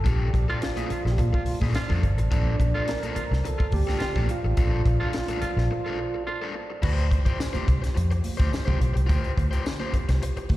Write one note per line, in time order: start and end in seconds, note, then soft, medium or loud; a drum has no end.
0.00 6.80 A5 medium
0.04 0.29 A#1 loud
0.04 0.27 D4 medium
0.04 0.27 F4 medium
0.04 0.33 G4 medium
0.04 0.28 A4 medium
0.04 6.79 C5 medium
0.04 6.79 D5 medium
0.04 kick loud
0.04 closed hi-hat medium
0.04 muted conga soft
0.20 muted conga soft
0.33 0.46 A#1 loud
0.33 0.47 G4 medium
0.33 muted overdriven electric guitar stroke soft
0.33 kick medium
0.33 closed hi-hat medium
0.48 0.61 D4 soft
0.48 0.58 F4 loud
0.48 0.62 F4 medium
0.48 0.62 A4 medium
0.62 1.04 F4 medium
0.62 muted overdriven electric guitar stroke soft
0.62 snare loud
0.62 closed hi-hat medium
0.77 0.89 D4 medium
0.77 0.89 F4 medium
0.77 0.90 A4 medium
0.77 closed hi-hat medium
0.77 muted conga soft
0.77 high conga medium
0.89 1.01 F4 medium
0.89 muted overdriven electric guitar stroke soft
0.89 muted fingered electric bass stroke soft
0.89 closed hi-hat medium
0.89 low conga medium
1.05 1.16 A#1 medium
1.05 1.12 F4 medium
1.05 muted overdriven electric guitar stroke soft
1.05 snare soft
1.12 1.19 G4 medium
1.18 1.31 A#2 loud
1.18 1.59 F4 medium
1.18 muted overdriven electric guitar stroke soft
1.18 kick medium
1.18 closed hi-hat medium
1.18 muted conga soft
1.18 low conga medium
1.33 1.43 F4 medium
1.33 muted overdriven electric guitar stroke medium
1.33 kick medium
1.33 muted conga soft
1.46 muted fingered electric bass stroke soft
1.46 open hi-hat medium
1.46 high conga medium
1.60 1.73 A#2 medium
1.60 1.73 D4 medium
1.60 1.74 F4 medium
1.60 1.75 A4 medium
1.60 kick medium
1.60 snare soft
1.60 high conga medium
1.75 2.12 F4 loud
1.75 muted overdriven electric guitar stroke soft
1.75 snare loud
1.75 closed hi-hat loud
1.90 2.01 F2 medium
1.90 2.02 D4 medium
1.90 2.02 F4 medium
1.90 2.03 A4 medium
1.90 kick medium
1.90 snare soft
1.90 high conga medium
1.90 low conga medium
2.03 2.16 G1 loud
2.03 muted overdriven electric guitar stroke medium
2.03 kick medium
2.03 closed hi-hat medium
2.17 2.29 A1 medium
2.17 muted overdriven electric guitar stroke medium
2.17 closed hi-hat medium
2.31 2.54 A#1 loud
2.31 2.53 D4 medium
2.31 2.91 D4 medium
2.31 2.54 F4 medium
2.31 2.54 A4 loud
2.31 kick loud
2.31 closed hi-hat medium
2.31 muted conga soft
2.46 muted conga soft
2.60 2.72 A#1 medium
2.60 muted overdriven electric guitar stroke soft
2.60 kick medium
2.60 closed hi-hat medium
2.74 2.87 D4 medium
2.74 2.83 F4 loud
2.74 2.88 F4 medium
2.74 2.89 A4 medium
2.88 3.47 A#4 loud
2.88 muted overdriven electric guitar stroke soft
2.88 snare loud
2.88 closed hi-hat medium
2.88 muted conga soft
3.03 3.16 D4 medium
3.03 3.17 F4 medium
3.03 3.18 A4 medium
3.03 closed hi-hat soft
3.03 high conga medium
3.15 3.25 F4 medium
3.15 muted fingered electric bass stroke soft
3.15 muted overdriven electric guitar stroke medium
3.15 closed hi-hat medium
3.15 low conga medium
3.31 3.42 C2 loud
3.31 muted overdriven electric guitar stroke medium
3.31 snare soft
3.44 3.74 A4 medium
3.44 muted overdriven electric guitar stroke soft
3.44 closed hi-hat medium
3.44 low conga medium
3.58 3.67 F4 medium
3.58 muted overdriven electric guitar stroke medium
3.58 muted fingered electric bass stroke soft
3.58 kick medium
3.72 3.85 D2 medium
3.72 4.31 G4 loud
3.72 kick medium
3.72 open hi-hat medium
3.72 high conga medium
3.87 4.00 D4 medium
3.87 4.01 F4 medium
3.87 4.01 A4 medium
3.87 snare soft
3.87 high conga medium
3.99 4.17 F4 loud
3.99 muted fingered electric bass stroke soft
3.99 muted overdriven electric guitar stroke soft
3.99 snare loud
3.99 closed hi-hat loud
3.99 muted conga soft
4.15 4.27 A#1 medium
4.15 4.28 D4 medium
4.15 4.29 F4 medium
4.15 4.29 A4 medium
4.15 kick medium
4.15 snare soft
4.15 high conga medium
4.15 low conga medium
4.29 6.23 F4 loud
4.29 muted overdriven electric guitar stroke soft
4.29 closed hi-hat medium
4.44 4.55 A1 medium
4.44 muted overdriven electric guitar stroke medium
4.57 4.80 A#1 loud
4.57 4.80 D4 medium
4.57 4.80 F4 loud
4.57 4.80 A4 loud
4.57 kick loud
4.57 closed hi-hat medium
4.57 muted conga soft
4.72 muted conga soft
4.86 4.98 A#1 loud
4.86 muted overdriven electric guitar stroke soft
4.86 kick loud
4.86 closed hi-hat medium
5.00 5.13 D4 soft
5.00 5.09 F4 loud
5.00 5.14 F4 medium
5.00 5.15 A4 medium
5.13 muted overdriven electric guitar stroke soft
5.13 snare loud
5.13 closed hi-hat medium
5.28 5.41 D4 medium
5.28 5.42 F4 medium
5.28 5.43 A4 medium
5.28 closed hi-hat medium
5.28 high conga medium
5.41 5.51 F4 loud
5.41 muted fingered electric bass stroke medium
5.41 muted overdriven electric guitar stroke soft
5.41 closed hi-hat medium
5.41 low conga medium
5.57 5.68 A#1 loud
5.57 muted overdriven electric guitar stroke soft
5.57 snare soft
5.71 muted overdriven electric guitar stroke soft
5.84 5.98 D4 medium
5.84 5.93 F4 medium
5.84 5.99 F4 medium
5.84 5.99 A4 medium
5.99 muted overdriven electric guitar stroke soft
6.14 muted overdriven electric guitar stroke soft
6.26 6.45 F4 loud
6.26 muted overdriven electric guitar stroke soft
6.42 6.54 D4 medium
6.42 6.54 F4 medium
6.42 6.55 A4 medium
6.55 muted overdriven electric guitar stroke soft
6.70 muted overdriven electric guitar stroke soft
6.82 7.18 D2 loud
6.82 10.57 E4 medium
6.82 7.05 F4 medium
6.82 10.57 F4 medium
6.82 7.05 G4 medium
6.82 10.57 G4 medium
6.82 9.07 C5 medium
6.82 7.06 C5 loud
6.82 kick loud
6.82 crash loud
6.82 muted conga soft
6.98 closed hi-hat soft
7.11 muted overdriven electric guitar stroke soft
7.11 kick loud
7.11 closed hi-hat medium
7.26 7.38 F4 medium
7.26 7.39 G4 medium
7.26 7.39 C5 medium
7.26 kick loud
7.26 closed hi-hat medium
7.38 muted overdriven electric guitar stroke soft
7.38 snare loud
7.38 tambourine loud
7.38 muted conga soft
7.53 7.66 F4 medium
7.53 7.67 G4 medium
7.53 7.68 C5 medium
7.53 muted fingered electric bass stroke medium
7.53 closed hi-hat soft
7.53 muted conga soft
7.53 high conga medium
7.67 7.80 C2 medium
7.67 muted overdriven electric guitar stroke soft
7.67 kick loud
7.67 closed hi-hat medium
7.67 low conga medium
7.82 muted overdriven electric guitar stroke soft
7.82 snare soft
7.82 closed hi-hat medium
7.95 8.20 F2 loud
7.95 muted overdriven electric guitar stroke soft
7.95 closed hi-hat medium
7.95 muted conga soft
8.11 muted overdriven electric guitar stroke medium
8.11 closed hi-hat soft
8.24 open hi-hat medium
8.24 high conga medium
8.37 8.50 D2 medium
8.37 8.50 F4 medium
8.37 8.51 G4 medium
8.37 8.52 C5 medium
8.37 kick loud
8.37 snare soft
8.37 closed hi-hat medium
8.37 high conga medium
8.51 muted overdriven electric guitar stroke soft
8.51 snare loud
8.51 tambourine medium
8.51 muted conga soft
8.65 8.78 C2 medium
8.65 8.78 F4 medium
8.65 8.79 G4 medium
8.65 8.80 C5 medium
8.65 kick loud
8.65 closed hi-hat soft
8.65 high conga medium
8.65 low conga medium
8.80 8.93 B1 medium
8.80 muted overdriven electric guitar stroke soft
8.80 closed hi-hat medium
8.94 9.07 C2 medium
8.94 muted overdriven electric guitar stroke soft
8.94 closed hi-hat medium
9.07 9.21 D2 loud
9.07 9.30 F4 medium
9.07 9.30 G4 medium
9.07 10.57 B4 medium
9.07 9.31 C5 loud
9.07 kick loud
9.07 closed hi-hat medium
9.24 closed hi-hat soft
9.24 muted conga soft
9.37 9.49 D2 medium
9.37 muted overdriven electric guitar stroke soft
9.37 kick loud
9.37 closed hi-hat medium
9.51 9.64 F4 medium
9.51 9.64 G4 medium
9.51 9.65 C5 medium
9.51 closed hi-hat soft
9.64 muted overdriven electric guitar stroke soft
9.64 snare loud
9.64 tambourine loud
9.64 muted conga soft
9.79 9.93 F4 medium
9.79 9.93 G4 medium
9.79 9.94 C5 medium
9.79 high conga medium
9.92 muted fingered electric bass stroke soft
9.92 muted overdriven electric guitar stroke soft
9.92 kick medium
9.92 closed hi-hat medium
9.92 low conga medium
10.09 10.19 C2 loud
10.09 muted overdriven electric guitar stroke soft
10.09 snare soft
10.09 closed hi-hat medium
10.20 muted overdriven electric guitar stroke soft
10.20 closed hi-hat loud
10.20 muted conga soft
10.36 muted fingered electric bass stroke soft
10.36 muted overdriven electric guitar stroke soft
10.36 closed hi-hat soft
10.36 muted conga soft
10.49 10.57 D2 loud
10.49 kick loud
10.49 open hi-hat medium
10.49 high conga medium